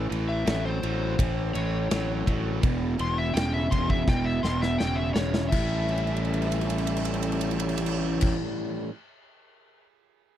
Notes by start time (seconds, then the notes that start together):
Already playing: C#4 A4 G5
0.09 A1 A2 E3, ride
0.29 E5
0.45 A1 A2 F#3, snare, ride
0.65 C5
0.83 A1 A2 F#3, ride
1.19 A1 A2 E3, kick, ride
1.54 A1 A2 E3 C#5, ride
1.91 A1 A2 F#3, snare, ride
2.26 A1 A2 F#3, kick, ride
2.61 E1 E2 B2 B3 E4 G#4, kick, ride
2.98 E1 E2 B2 C6, ride
3.18 E5
3.34 E1 E2 C#3 G5, snare, ride
3.54 E5
3.71 E1 E2 C#3 C6, kick, ride
3.90 E5, kick
4.07 E1 E2 B2 G5, kick, snare
4.25 E5
4.43 E1 E2 B2 C6, snare
4.62 E5, snare
4.78 E1 E2 C#3 G5, snare
4.96 E5
5.14 E1 E2 C#3 C#5, snare
5.34 snare
5.48 A2 C#4 G4 A4 E5, kick, crash
5.53 A1 E3 G3 C#4 E4 A4
5.89 crash
5.98 ride
6.07 crash
6.16 ride
6.25 crash
6.34 ride
6.42 crash
6.52 ride
6.61 crash
6.70 ride
6.78 crash
6.87 ride
6.96 crash
7.05 ride
7.14 crash
7.22 ride
7.32 crash
7.41 ride
7.51 crash
7.60 ride
7.69 crash
7.78 ride
7.86 crash
8.21 kick, crash